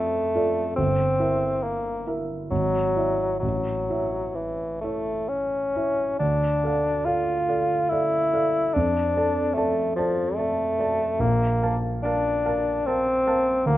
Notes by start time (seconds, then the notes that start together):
Already playing: F2 A3 F4 A4 D5
0.35 F4 A4 D5
0.76 G1 C4
1.19 E4 A#4 E5
1.63 A#3
2.07 E4 A#4 E5
2.51 G#1 F#3
2.96 E4 D5 E5
3.39 A1 F#3
3.90 E4 C#5 E5
4.35 E3
4.81 A3 E4 C#5 E5
5.28 C#4
5.76 E4 C#5 E5
6.19 D2 D4
6.64 A4 D5 F5
7.05 F4 A4 D5 F5
7.49 A4 D5 F5
7.89 E4 A4 D5 F5
8.33 A4 D5 F5
8.74 F2 D4
9.17 A4 D5 A5
9.54 A3 A4 D5 A5
9.96 F3 A4 D5 A5
10.36 A3 A4 D5 A5
10.79 A4 D5 A5
11.19 A#1 A#3
11.62 A#4 F5 A5
12.03 D4 A#4 F5 A5
12.45 A#4 F5 A5
12.86 C4 A#4 F5 A5
13.27 A#4 F5 A5
13.66 D2 A#3